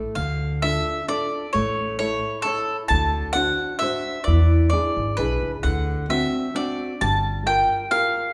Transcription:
Already playing: A3
0.15 D2 D3 F5
0.62 D4 F4 A4 E5
1.08 D4 F4 A4 D5
1.53 A1 A3 C#5
1.99 E4 A4 C#5
2.42 E4 A4 C#5
2.88 D2 D3 A5
3.33 D4 F#4 C5 F#5
3.79 D4 F#4 C5 E5
4.24 E2 E3 D5
4.70 D4 E4 G#4 D5
4.97 G#1
5.17 B1 D4 E4 G#4 B4
5.43 C#2
5.63 D2 D3 F#5
6.09 C4 D4 F#4 E5
6.55 C4 D4 F#4 D5
7.01 G1 G3 A5
7.46 F4 G4 A#4 G5
7.91 F4 G4 A#4 F5

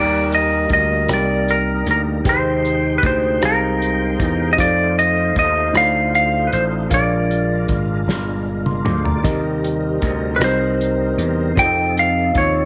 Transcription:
Already playing: D#2 G3 A#3 D#4 G4 A#4 D5 G5 A#5
0.32 D#5, closed hi-hat
0.69 D2, kick, closed hi-hat
0.73 D#5
1.08 C2 D#4 G4 A#4 D5 G5, cross-stick, closed hi-hat
1.13 D5
1.48 A#4, closed hi-hat
1.86 D2, closed hi-hat
1.91 A#4
2.24 D#2 C3 G#3 D#4 G4 G#4 B4 C5 G5, kick, closed hi-hat
2.29 C5
2.65 closed hi-hat
2.98 B4
3.03 D2 C5, kick, closed hi-hat
3.40 C2 D#4 G4 G#4 C5 F5, cross-stick, closed hi-hat
3.45 A#4
3.82 closed hi-hat
4.19 E2, kick, closed hi-hat
4.53 D#4 D#5
4.57 F2 A3 D#4 F4 G4 C5 D5 F5, kick, closed hi-hat
4.65 A4
4.99 D#5, closed hi-hat
5.36 D#2 D#5, kick, closed hi-hat
5.73 D2 D#4 F4 A4 C5 D5 F5, cross-stick, closed hi-hat
6.15 F5, closed hi-hat
6.47 B4
6.52 A1 C5, closed hi-hat
6.89 A#1 A#2 G#3 D4 F4 G#4 A#4 F5, kick, closed hi-hat
6.94 A#4 D5
7.31 closed hi-hat
7.68 G#1, kick, closed hi-hat
8.07 G1, snare
8.47 A#4
8.66 C6, mid tom
8.85 D2 C5 D6, mid tom
9.05 D5 A#5, floor tom
9.22 D#2 C3 G3 C4 D#4 G4 A#4 D#5, kick, closed hi-hat
9.64 closed hi-hat
10.02 D2, kick, closed hi-hat
10.36 C2 C4 D#4 G4 B4
10.40 A#4 C5 D#5, cross-stick, closed hi-hat
10.81 closed hi-hat
11.18 E2, closed hi-hat
11.55 F2 C3 F3 C4 D#4 F4 G#4 A4 D5 G5, kick, closed hi-hat
11.62 A4 D#5
11.97 F5, closed hi-hat
12.35 D#2 C#5, kick, closed hi-hat

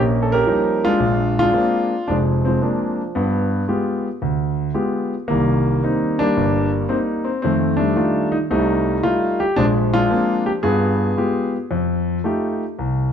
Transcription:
Already playing: A#1 A#3 C#4
0.22 A4
0.32 C#4 G4 A#4
0.46 F3 G3 C#4 D#4
0.85 G#3 D4 F4
1.00 A#1
1.39 G#3 D4 F4
1.53 G#3 A#3 C4 D4
2.08 F1 F3 G#3 D4
2.45 F3 G#3 C4
2.62 G#3 A#3 C4 D4
3.15 G2 B3
3.68 G#3 B3 F4 G4
4.22 D2
4.74 G#3 B3 F4 G4
5.28 C2 D#3 G3 A#3
5.84 A#3 C4 D#4
6.19 G3 A#3 D4
6.37 G1
6.89 A#3 C4 D#4
7.25 C4
7.42 F2 D#3 A3 C4
7.77 G3 A3 D4
7.96 G3 A3 D#4 F4
8.32 D#4
8.51 C2 C3 G3 A3 D#4
9.03 G3 A3 D#4 F4
9.40 G4
9.56 A#1 F3 G#3 D4
9.94 G#3 D4 F4
10.10 G#3 A#3 C4 D4
10.46 G4
10.63 G2 B3 F4 G#4
11.17 G#3 B3 F4 G4
11.71 F2
12.24 A3 D#4 F4 G4
12.79 C2

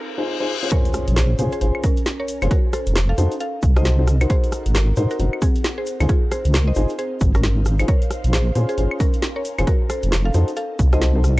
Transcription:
Already playing: reverse cymbal
0.18 D#4 F4 G#4 C5
0.40 D#4 F4 G#4 C5
0.63 C#4 F4 G#4 C5
0.71 C#4 F4 G#4 A#4 C5 C#5, kick, closed hi-hat, impact, shaker
0.85 open hi-hat
0.94 cross-stick, open hi-hat, shaker
1.07 A#1, closed hi-hat, shaker
1.16 G#4 C5, snare, closed hi-hat, shaker
1.39 A#2 C#4 F4 G#4 C5, open hi-hat, shaker
1.52 G#4 C5, closed hi-hat, shaker
1.61 G#1 C#4 F4 G#4 C5, closed hi-hat, shaker
1.75 claves
1.83 C#4 A#4, kick, open hi-hat, shaker
1.97 closed hi-hat, shaker
2.06 snare, closed hi-hat, shaker
2.20 A#4 C#5
2.28 open hi-hat, shaker
2.42 F1 C#4 F4 G#4 C5, closed hi-hat, claves, shaker
2.51 D#4 F#4 A#4, kick, closed hi-hat, shaker
2.73 A4 C5, cross-stick, open hi-hat, shaker
2.87 F1, closed hi-hat, shaker
2.96 snare, closed hi-hat, shaker
3.09 A4 F5
3.15 F2 D#4 F#4 A4 C5 F#5, open hi-hat, shaker
3.31 closed hi-hat, shaker
3.40 A4 F5, closed hi-hat, shaker
3.62 C2, kick, open hi-hat, shaker
3.76 D#4 F#4 A4 C5 D#5, cross-stick, closed hi-hat, shaker
3.84 snare, closed hi-hat, shaker
3.99 D#4 F#4 A4 C5
4.07 cross-stick, open hi-hat, shaker
4.21 D#4 F#4 A#4 C5, closed hi-hat, claves, shaker
4.30 C4 G#4 C5, kick, closed hi-hat, shaker
4.44 open hi-hat
4.52 cross-stick, open hi-hat, shaker
4.66 G#1, closed hi-hat, shaker
4.73 F#4 A#4, snare, closed hi-hat, shaker
4.96 G#2 D#4 F#4 A#4 C5, open hi-hat, shaker
5.11 F#4 A#4, closed hi-hat, shaker
5.19 F#1 D#4 F#4 A#4 C5, closed hi-hat, shaker
5.33 claves
5.42 C4 G#4, kick, open hi-hat, shaker
5.55 closed hi-hat, shaker
5.64 snare, closed hi-hat, shaker
5.78 G#4 C5
5.86 D#4, open hi-hat, shaker
6.00 C#2 D#4 F4 G#4 C5, closed hi-hat, claves, shaker
6.08 F4 G#4, kick, closed hi-hat, shaker
6.18 C5
6.31 G#4 C5, cross-stick, open hi-hat, shaker
6.40 F5
6.45 C#2, closed hi-hat, shaker
6.53 snare, closed hi-hat, shaker
6.68 C5 D#5
6.75 G#1 D#4 F4 G#4 C5, open hi-hat, shaker
6.89 closed hi-hat, shaker
6.99 G#4 C5, closed hi-hat, shaker
7.20 G#1, kick, open hi-hat, shaker
7.35 C#4 A#4, cross-stick, closed hi-hat, shaker
7.44 snare, closed hi-hat, shaker
7.66 cross-stick, open hi-hat, shaker
7.79 D#4 F4 G#4 C5, closed hi-hat, claves, shaker
7.88 C#4 A#4 C#5, kick, closed hi-hat, shaker
7.96 A#4
8.02 open hi-hat
8.11 cross-stick, open hi-hat, shaker
8.24 A#1, closed hi-hat, shaker
8.33 G#4 C5, snare, closed hi-hat, shaker
8.55 A#2 C#4 F4 G#4 C5, open hi-hat, shaker
8.69 G#4 C5, closed hi-hat, shaker
8.78 G#1 C#4 F4 G#4 C5, closed hi-hat, shaker
8.91 claves
9.00 C#4 A#4, kick, open hi-hat, shaker
9.13 closed hi-hat, shaker
9.22 snare, closed hi-hat, shaker
9.36 A#4 C#5
9.45 open hi-hat, shaker
9.58 F1 C#4 F4 G#4 C5, closed hi-hat, claves, shaker
9.67 D#4 F#4 A#4, kick, closed hi-hat, shaker
9.90 A4 C5, cross-stick, open hi-hat, shaker
10.03 F1, closed hi-hat, shaker
10.12 snare, closed hi-hat, shaker
10.25 A4 F5
10.34 F2 D#4 F#4 A4 C5, open hi-hat, shaker
10.48 F#5, closed hi-hat, shaker
10.56 A4 F5, closed hi-hat, shaker
10.79 C2, kick, open hi-hat, shaker
10.93 D#4 F#4 A4 C5 D#5, cross-stick, closed hi-hat, shaker
11.01 snare, closed hi-hat, shaker
11.15 D#4 F#4 A4 C5
11.24 cross-stick, open hi-hat, shaker

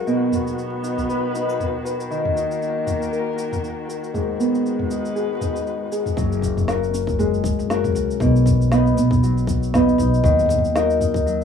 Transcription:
Already playing: F#3 C#4 F#4 G#4 A#4
0.06 B2 D#3, shaker
0.32 B3, mid tom, shaker
0.47 shaker
0.59 shaker
0.83 D#4, shaker
0.88 B4
0.98 mid tom, shaker
1.09 B4, shaker
1.34 D#4, shaker
1.49 shaker
1.60 mid tom, shaker
1.85 B4, shaker
2.00 shaker
2.10 D#3, shaker
2.25 mid tom
2.30 A#3
2.36 D#4, shaker
2.51 shaker
2.62 shaker
2.87 F#4, mid tom, shaker
2.91 A#4
3.02 shaker
3.12 A#4, shaker
3.37 F#4, shaker
3.52 mid tom, shaker
3.64 shaker
3.88 A#4, shaker
4.04 shaker
4.14 G#2, mid tom, shaker
4.39 G#3 B3, shaker
4.55 shaker
4.66 shaker
4.79 B4, mid tom
4.90 D#4, shaker
5.05 shaker
5.15 G#4, shaker
5.41 D#4, mid tom, shaker
5.56 shaker
5.67 shaker
5.92 G#4, shaker
6.06 mid tom, shaker
6.17 F#1 F#3, kick, shaker
6.32 shaker
6.42 kick, shaker
6.57 mid tom, shaker
6.68 C#4 F#4 A#4, snare, shaker
6.84 shaker
6.93 C#4, shaker
7.07 kick, shaker
7.19 G#3, mid tom, shaker
7.34 shaker
7.44 kick, shaker
7.59 F#1, shaker
7.70 C#4 F#4 A#4, snare, shaker
7.84 mid tom, shaker
7.95 C#2 F#4, shaker
8.11 shaker
8.20 B1 B2, kick, shaker
8.36 shaker
8.46 kick, mid tom, shaker
8.62 shaker
8.72 B3 D#4 B4, snare, shaker
8.87 shaker
8.97 B1 B3, shaker
9.11 kick, mid tom, shaker
9.23 F#3, shaker
9.38 shaker
9.47 kick, shaker
9.63 shaker
9.74 B3 D#4 B4, snare, mid tom, shaker
9.89 shaker
9.98 B1 D#4, kick, shaker
10.14 shaker
10.23 D#2 D#3, kick, shaker
10.39 mid tom, shaker
10.41 mid tom
10.46 kick, mid tom
10.50 mid tom, shaker
10.55 mid tom
10.58 mid tom
10.65 shaker
10.75 D#4 F#4 A#4, snare, shaker
10.90 shaker
11.00 D#4, mid tom, shaker
11.14 kick, shaker
11.26 F#3, shaker

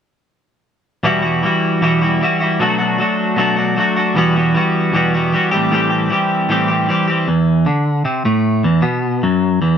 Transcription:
1.03 E2 B2 E3 G3 E4 F#4
1.22 E3 G3 E4 F#4
1.43 E3 G3 E4 F#4
1.81 E2 B2 E3 G3 E4 F#4
2.01 E3 G3 E4 F#4
2.21 E3 G3 E4 F#4
2.40 E3 G3 E4 F#4
2.60 B2 F#3 A3 D4 F#4
2.78 A3 D4 F#4
2.98 F#3 A3 D4 F#4
3.36 B2 F#3 A3 D4 F#4
3.56 A3 D4 F#4
3.76 F#3 A3 D4 F#4
3.96 A3 D4 F#4
4.15 E2 B2 E3 G3 B3 F#4
4.36 E3 G3 B3 F#4
4.54 E3 G3 B3 F#4
4.93 E2 B2 E3 G3 B3 F#4
5.14 E3 G3 B3 F#4
5.32 E3 G3 B3 F#4
5.51 A2 E3 G3 C4 G4
5.71 A2 E3 G3 C4 G4
5.90 G3 C4 G4
6.10 E3 G3 C4 G4
6.49 A2 E3 G3 C4 G4
6.68 G3 C4 G4
6.88 E3 G3 C4 G4
7.08 G3 C4 G4
7.28 E2
7.66 D3
8.05 C3
8.25 A2
8.64 E2
8.82 B2
9.23 F#2
9.62 E2

